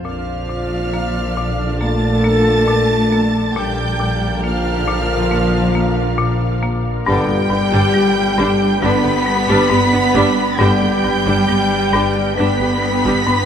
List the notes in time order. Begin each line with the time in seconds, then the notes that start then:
0.04 A#1 A#2 D3 F3 D4 F4 D5 F5 F6
0.49 A#2
0.94 A#3
1.37 A#2
1.80 A3 A#3 A4 A5 A6
2.24 A#3
2.68 A#2
3.12 A#3
3.56 A#1 A#2 D3 G3 A#3 D4 F4 A#4 D5 G5 G6
4.00 A#2
4.43 F3 A#3 F5 F6
4.87 A#2
5.31 A#3
5.75 A#3
6.18 A#2
6.63 A#3
7.05 G1 G2 D3 G3 B3 D4 B4 D5 G5 G6
7.28 G1 B3 G4
7.50 G1 G2 D4 B4
7.72 G1 G3 D4
7.93 G1 G3 B3 G4
8.37 G1 G2 G3 D4
8.81 G1 D3 G3 B3 D4 B5 B6
9.04 G1 B3 G4
9.26 G3
9.48 G1 G3 D4
9.69 G1 G2 B3 G4
9.92 G1 D4 B4
10.14 G1 G3 D4
10.58 G1 G2 D3 G3 B3 D4 B4 D5 G5 G6
10.81 G1 B3 G4
11.04 G1 G2 D4 B4
11.26 G1 G3 D4
11.48 G1 G3 B3 G4
11.93 G1 G2 G3 D4
12.37 G1 D3 G3 B3 D4 B5 B6
12.60 G1 B3 G4
12.83 G3
13.04 G1 G3 D4
13.27 G1 G2 B3 G4